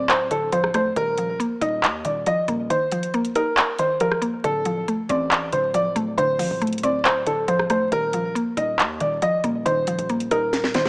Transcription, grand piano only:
0.09 0.26 C5 medium
0.31 0.48 A4 medium
0.52 0.69 C5 medium
0.75 0.92 C5 medium
0.97 1.38 A#4 loud
1.61 2.02 D#5 medium
2.05 2.22 D5 medium
2.27 2.43 D#5 medium
2.70 3.11 C5 medium
3.36 3.76 A#4 medium
3.79 3.96 C5 medium
4.01 4.17 A#4 medium
4.44 4.85 A4 loud
5.09 5.50 D5 medium
5.53 5.69 C5 medium
5.74 5.91 D5 medium
6.18 6.59 C5 loud
6.83 7.00 D5 medium
7.05 7.21 C5 medium
7.27 7.44 A4 medium
7.48 7.65 C5 medium
7.71 7.87 C5 medium
7.93 8.33 A#4 loud
8.57 8.98 D#5 medium
9.01 9.18 D5 medium
9.23 9.39 D#5 medium
9.66 10.07 C5 loud
10.31 10.72 A#4 medium
10.75 10.89 C5 medium

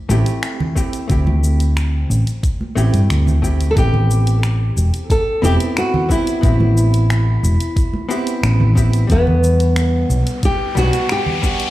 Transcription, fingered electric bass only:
0.10 0.22 A1 medium
1.10 2.03 D2 medium
2.10 2.23 A1 medium
2.76 2.89 A1 medium
2.94 3.06 G2 medium
3.10 3.70 D2 medium
3.77 4.70 A1 medium
4.77 4.89 E1 medium
5.43 5.56 E1 medium
6.43 7.37 A1 medium
7.43 7.56 E1 medium
8.43 9.03 A1 loud
9.10 10.03 E2 medium
10.10 10.23 B1 medium
10.76 10.89 B1 loud

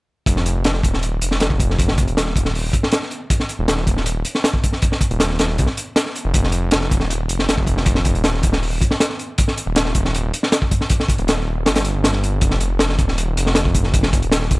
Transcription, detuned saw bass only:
0.26 0.82 F1 medium
0.83 1.20 D#1 medium
1.22 2.09 F1 medium
2.07 2.34 D#1 medium
2.36 2.72 D#1 medium
3.59 3.86 D#1 medium
3.87 4.24 D#1 medium
5.11 5.38 D#1 medium
5.39 5.59 D#1 medium
5.59 5.67 C2 medium
6.25 6.33 F1 medium
6.34 6.90 F1 medium
6.91 7.28 D#1 medium
7.29 8.16 F1 medium
8.15 8.42 D#1 medium
8.43 8.80 D#1 medium
9.66 9.93 D#1 medium
9.95 10.31 D#1 medium
11.19 11.45 D#1 medium
11.47 11.67 D#1 medium
11.66 12.40 G1 medium
12.42 12.97 F1 medium
12.99 13.35 D#1 medium
13.37 14.24 F1 medium
14.22 14.49 D#1 medium
14.51 14.60 D#1 medium

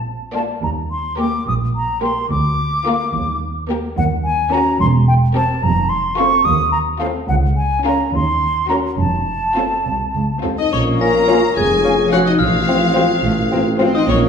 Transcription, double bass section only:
0.00 0.46 A#1 medium
0.63 1.31 D#2 soft
1.47 2.14 A#1 medium
2.30 2.97 D2 medium
3.14 3.81 D#2 medium
3.97 4.63 D#2 medium
4.80 5.46 E1 medium
5.63 6.30 F1 medium
6.46 7.13 D#2 medium
7.29 7.97 C#2 medium
8.13 8.82 D#2 medium
8.99 9.69 F1 medium
9.86 10.55 C2 soft
10.72 11.40 A#1 medium
11.57 12.24 F1 medium
12.40 13.07 A1 medium
13.24 13.91 A1 medium
14.08 14.29 A#1 medium

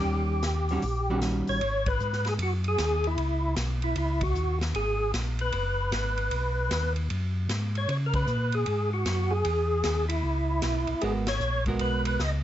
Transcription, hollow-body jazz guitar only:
0.00 0.41 D#3 medium
0.00 0.42 G3 medium
0.00 0.42 C#4 medium
0.71 0.82 D#3 medium
0.71 0.83 G3 medium
0.71 0.83 C#4 medium
0.71 0.83 F#4 medium
1.10 1.59 D#3 medium
1.10 1.59 G3 medium
1.10 1.60 C#4 medium
1.10 1.60 F#4 medium
11.03 11.25 G#3 medium
11.03 11.25 B3 medium
11.03 11.26 F#4 medium
11.03 11.26 A#4 medium
11.67 12.17 G#3 medium
11.67 12.17 B3 medium
11.67 12.18 F#4 medium
11.67 12.18 A#4 medium

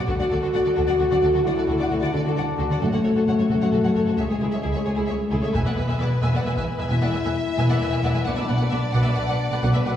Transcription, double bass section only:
0.09 0.13 D2 medium
0.32 0.36 D2 soft
0.55 0.59 D2 soft
0.77 0.82 D2 medium
0.98 1.03 D2 medium
1.21 1.26 D2 soft
1.44 1.48 D2 soft
1.68 1.72 D2 medium
1.92 1.96 D2 medium
2.13 2.18 D2 soft
2.36 2.40 D2 soft
2.58 2.63 D2 soft
2.82 2.86 F#1 medium
3.05 3.09 F#1 soft
3.26 3.31 F#1 soft
3.49 3.54 F#1 soft
3.73 3.77 F#1 soft
3.95 4.00 F#1 soft
4.17 4.22 C#2 soft
4.41 4.45 C#2 soft
4.63 4.68 C#2 soft
4.86 4.90 C#2 soft
5.10 5.14 C#2 soft
5.32 5.37 C#2 soft
5.55 5.60 E1 soft
5.77 5.82 E1 soft
6.00 6.05 E1 soft
6.21 6.26 E1 soft
6.44 6.49 E1 soft
6.90 6.94 E1 soft
7.12 7.17 E1 soft
7.58 7.63 E1 soft
7.81 7.86 E1 soft
8.04 8.08 E1 soft
8.26 8.30 B1 soft
8.49 8.54 B1 soft
8.71 8.76 B1 soft
8.94 8.98 B1 medium
9.16 9.21 B1 soft
9.62 9.67 B1 medium
9.85 9.90 B1 soft

